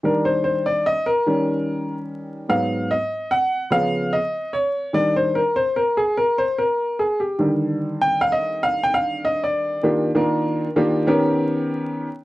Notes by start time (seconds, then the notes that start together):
0.03 D#3 G3 D4 A#4
0.25 C5
0.44 C5
0.66 D5
0.86 D#5
1.06 A#4
1.26 D#3 G3 C#4
2.49 G#2 F#3 B3 F5
2.91 D#5
3.31 F#5
3.70 C#3 F3 B3 F5
4.13 D#5
4.53 C#5
4.93 D#3 G3 D4 D5
5.16 C5
5.35 A#4
5.56 C5
5.76 A#4
5.97 G#4
6.17 A#4
6.38 C5
6.58 A#4
6.99 G#4
7.20 G4
7.39 D3 D#3 G3
8.01 G5
8.21 F5
8.32 D#5
8.63 F5
8.83 G5
8.94 F5
9.25 D#5
9.44 D5
9.83 D#3 A#3 D4 F4 G4
10.15 D#3 A#3 D4 F4 A#4
10.76 D#3 A#3 D4 F4 G4
11.07 D#3 B3 C#4 G4 A#4